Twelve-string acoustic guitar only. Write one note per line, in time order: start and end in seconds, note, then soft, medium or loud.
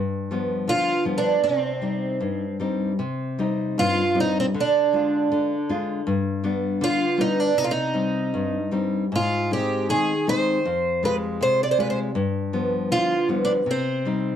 0.69 1.03 F4 medium
1.18 1.43 D4 medium
1.44 2.56 C4 medium
3.79 4.18 F4 medium
4.20 4.38 D#4 medium
4.40 4.45 C4 medium
4.60 5.69 D4 medium
6.84 7.21 F4 medium
7.21 7.40 D#4 medium
7.40 7.58 D4 medium
7.58 7.64 D#4 medium
7.64 7.71 F4 medium
7.71 8.69 D#4 medium
9.15 9.50 F4 medium
9.53 9.90 G4 medium
9.90 10.29 G#4 medium
10.29 11.05 C5 medium
11.05 11.15 B4 medium
11.43 11.62 C5 medium
11.63 11.71 D5 medium
11.71 11.80 C5 medium
11.80 11.89 B4 medium
11.90 11.98 C5 medium
12.92 13.27 F4 medium
13.45 13.51 D4 medium
13.71 14.36 C4 medium